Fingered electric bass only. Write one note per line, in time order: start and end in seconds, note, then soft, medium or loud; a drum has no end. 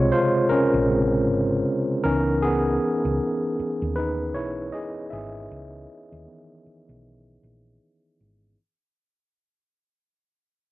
0.51 muted fingered electric bass stroke soft
0.74 1.28 A#1 medium
1.28 1.62 G#1 medium
2.05 2.77 C#2 medium
3.05 3.18 C#2 medium
3.59 muted fingered electric bass stroke soft
3.82 4.36 D#2 medium
4.36 4.70 B1 medium
5.13 5.47 G#1 medium
5.51 5.85 C#2 medium
6.12 6.26 D#2 medium
6.66 muted fingered electric bass stroke soft
6.89 7.38 B1 medium
7.43 7.77 A#1 medium
8.20 8.54 G#1 medium